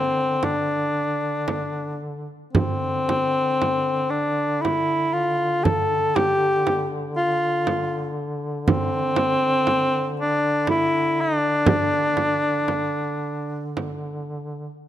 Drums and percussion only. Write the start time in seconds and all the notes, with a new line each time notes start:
0.43 frame drum
1.48 frame drum
2.55 frame drum
3.09 frame drum
3.62 frame drum
4.65 frame drum
5.65 frame drum
6.16 frame drum
6.67 frame drum
7.67 frame drum
8.68 frame drum
9.16 frame drum
9.67 frame drum
10.67 frame drum
11.66 frame drum
12.17 frame drum
12.68 frame drum
13.77 frame drum